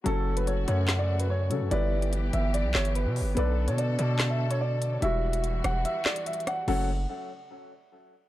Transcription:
<<
  \new Staff \with { instrumentName = "Grand piano" } { \time 4/4 \key fis \phrygian \tempo 4 = 145 a'8. b'16 cis''8 cis''8. d''8 b'16 cis''4 | d''4. e''8 d''8 cis''8 b'4 | b'8. cis''16 d''8 d''8. e''8 cis''16 d''4 | e''4. fis''8 e''8 d''8 e''8 fis''8 |
fis''8 r2. r8 | }
  \new Staff \with { instrumentName = "Felt piano" } { \time 4/4 \key fis \phrygian <fis cis' a'>2.~ <fis cis' a'>8 <fis cis' a'>8 | <g e' b'>1 | <b a' d''>1 | <g e' fis'>1 |
<fis cis' a'>8 r2. r8 | }
  \new Staff \with { instrumentName = "String section" } { \time 4/4 \key fis \phrygian << { <cis fis'>1 | <e g'>1 | <d a'>1 | <e fis'>1 |
<cis a fis'>8 r2. r8 | } \\ { a1 | b1~ | b1 | g1 |
r1 | } >> }
  \new Staff \with { instrumentName = "808-style bass" } { \clef bass \time 4/4 \key fis \phrygian fis,,4. fis,2 cis16 fis,16 | g,,4. g,,8. b,,16 g,,8. b,16. g,,16. | b,,8. b,8. b,2~ b,8 | e,,4. e,,8 r2 |
fis,,4 r2. | }
  \new DrumStaff \with { instrumentName = "Drums" } \drummode { \time 4/4 hh8. hh16 hh8 hh8 <hc hh sn>8. hh16 r8 hh8 | hh8. hh16 hh8 hh8 hh8 <hc sn>16 hh16 hh8 hho8 | hh8. hh16 hh8 hh8 <hc hh sn>8. hh16 r8 hh8 | hh8. hh16 hh8 <hh ss>8 hh8 <hc sn>16 hh16 \tuplet 3/2 { hh16 hh16 hh16 <hh ss>16 r16 r16 } |
cymc4 r4 r4 r4 | }
>>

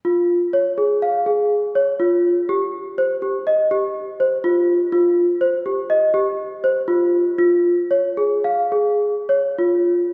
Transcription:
\new Staff \with { instrumentName = "Celesta" } { \time 5/4 \key f \minor \tempo 4 = 123 f'4 des''8 aes'8 f''8 aes'4 des''8 f'4 | g'4 c''8 g'8 ees''8 g'4 c''8 f'4 | f'4 c''8 g'8 ees''8 g'4 c''8 f'4 | f'4 des''8 aes'8 f''8 aes'4 des''8 f'4 | }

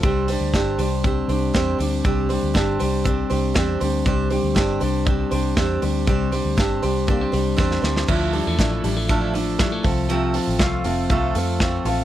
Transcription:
<<
  \new Staff \with { instrumentName = "Steel-string acoustic guitar" } { \time 4/4 \key c \mixolydian \tempo 4 = 119 <c' d' g' c''>8 <d' g' c''>8 <c' d' g' c''>8 <d' g' c''>8 <c' d' g' c''>8 <d' g' c''>8 <c' d' g' c''>8 <d' g' c''>8 | <c' d' g' c''>8 <d' g' c''>8 <c' d' g' c''>8 <d' g' c''>8 <c' d' g' c''>8 <d' g' c''>8 <c' d' g' c''>8 <d' g' c''>8 | <c' d' g' c''>8 <d' g' c''>8 <c' d' g' c''>8 <d' g' c''>8 <c' d' g' c''>8 <d' g' c''>8 <c' d' g' c''>8 <d' g' c''>8 | <c' d' g' c''>8 <d' g' c''>8 <c' d' g' c''>8 <d' g' c''>8 <c' d' g' c''>8 <d' g' c''>8 <c' d' g' c''>8 <d' g' c''>8 |
<d f a d' e' a'>8 <a d' e' a'>8 <a d' e' a'>8 <a d' e' a'>8 <d f a d' e' a'>8 <a d' e' a'>8 <a d' e' a'>8 <a c' f' a'>8 | <c f a c' f' a'>8 <a c' f' a'>8 <a c' f' a'>8 <a c' f' a'>8 <c f a c' f' a'>8 <a c' f' a'>8 <a c' f' a'>8 <a c' f' a'>8 | }
  \new Staff \with { instrumentName = "Clean electric guitar" } { \clef bass \time 4/4 \key c \mixolydian g8 g8 d'8 g8 c'8 g8 c'8 g8 | g8 g8 d'8 g8 c'8 g8 c'8 g8 | g8 g8 d'8 g8 c'8 g8 c'8 g8 | g8 g8 d'8 g8 bes16 c'16 g8 c'8 g8 |
f8 g16 a16 d'16 e'16 g16 a16 d'16 e'16 f8 g16 a16 f8 | f8 c'8 f'8 c'8 f'8 a8 c'8 f'8 | }
  \new Staff \with { instrumentName = "Fingered electric bass" } { \clef bass \time 4/4 \key c \mixolydian c,8. d,16 g,,8 c,4 c,8 e,8 d,8 | c,8. d,16 g,,8 c,4 c,8 e,8 d,8 | c,8. d,16 g,,8 c,4 c,8 e,8 d,8 | c,8. d,16 g,,8 c,4 c,8 e,8 d,8 |
d,8. e,16 a,,8 a,,2 c,8~ | c,8. a,,16 c,8 f,,8 c,8 f,4 a,,8 | }
  \new DrumStaff \with { instrumentName = "Drums" } \drummode { \time 4/4 <hh bd>8 hho8 <hh bd sn>8 hho8 <hh bd>8 hho8 <hh bd sn>8 hho8 | <hh bd>8 hho8 <hh bd sn>8 hho8 <hh bd>8 hho8 <hh bd sn>8 hho8 | <hh bd>8 hho8 <hh bd sn>8 hho8 <hh bd>8 hho8 <hh bd sn>8 hho8 | <hh bd>8 hho8 <hh bd sn>8 hho8 <hh bd>8 hho8 <bd sn>16 sn16 sn16 sn16 |
<cymc bd>8 hho8 <hh bd sn>8 hho8 <hh bd>8 hho8 <hh bd sn>8 <hho bd>8 | hh8 hho8 <hh bd sn>8 hho8 <hh bd>8 hho8 <hh bd sn>8 hho8 | }
>>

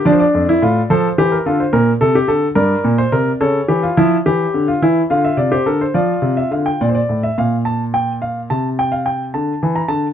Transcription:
<<
  \new Staff \with { instrumentName = "Grand piano" } { \time 12/8 \key bes \major \tempo 4. = 71 << { d''32 c''32 d''4~ d''16 c''8. bes'16 a'16 c''16 bes'4. d''4. | cis''2. f''16 e''16 d''16 c''16 bes'16 c''16 d''8. e''16 f''16 g''16 | d''32 c''32 d''8 e''16 f''8 a''8 g''8 f''8 a''8 g''16 f''16 g''8 a''8. bes''16 a''8 | } \\ { d'8. e'16 f'8 a'8 g'8 f'8 r8 a'16 g'16 a'8 bes'8. c''16 bes'8 | a'8 g'16 f'16 e'8 g'8. f'16 e'8 f'8. g'16 a'8 f'4. | r1. | } >> }
  \new Staff \with { instrumentName = "Grand piano" } { \clef bass \time 12/8 \key bes \major f8 f,8 a,8 f8 e8 d8 bes,8 c8 d8 g,8 bes,8 c8 | cis8 e8 f8 e8 d8 e8 d8 c8 d8 f8 c8 d8 | bes,8 a,8 bes,2 c4. d8 e8 d8 | }
>>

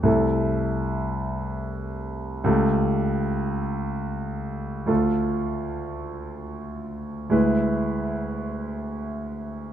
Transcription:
\new Staff \with { instrumentName = "Grand piano" } { \time 12/8 \key a \minor \tempo 4. = 49 <c, a e' a'>2. <cis, a g' a'>2. | <d, a f' a'>2. <d, gis e' b'>2. | }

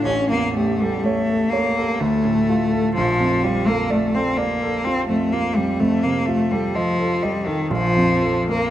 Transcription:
<<
  \new Staff \with { instrumentName = "Grand piano" } { \time 3/4 \key bes \lydian \tempo 4 = 63 a,,16 e,16 g'16 a'16 cis''16 a'16 cis''16 a'16 d,16 a,16 f'16 a'16 | bes,,16 f,16 f'16 a'16 d''16 a'16 d''16 a'16 f'16 f,16 f'16 f,16 | f,16 c16 f'16 a'16 ees''16 a'16 ees''16 a'16 bes,,16 f,16 a'16 bes'16 | }
  \new Staff \with { instrumentName = "Cello" } { \time 3/4 \key bes \lydian cis'16 bes16 a16 g16 a8 bes8 a4 | f8 g16 bes16 a16 c'16 bes8 c'16 a16 bes16 g16 | a16 bes16 a16 g16 f8 g16 ees16 f8. bes16 | }
>>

